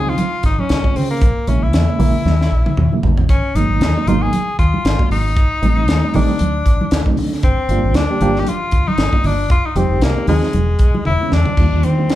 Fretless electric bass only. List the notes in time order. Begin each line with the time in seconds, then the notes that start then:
Already playing: C#2
0.44 G#1
0.70 C#2
0.84 muted fretless electric bass stroke
0.96 C#3
1.21 A#1
1.37 muted fretless electric bass stroke
1.47 A#1
1.62 A#1
1.73 E2
1.99 A#1
2.25 D#2
2.52 A#1
2.77 D#2
3.03 A1
3.29 G#1
3.43 muted fretless electric bass stroke
3.55 G#1
3.69 G#1
3.80 D#2
4.07 G#1
4.59 D#2
4.85 G#1
5.10 G#1
5.37 A1
5.62 A1
5.77 A1
5.89 D#2
6.15 A1
6.40 D2
6.65 A1
6.92 D2
7.06 muted fretless electric bass stroke
7.17 D3
7.43 G1
7.58 muted fretless electric bass stroke
7.69 G1
7.84 G1
7.95 D2
8.21 G1
8.72 D2
8.98 G1
9.24 G1
9.50 F1
9.64 muted fretless electric bass stroke
9.75 F1
9.90 F1
10.01 C2
10.28 D#2
10.54 E1
10.79 B1
11.07 E1
11.32 E2
11.58 D#2
11.73 D#2
11.85 D#3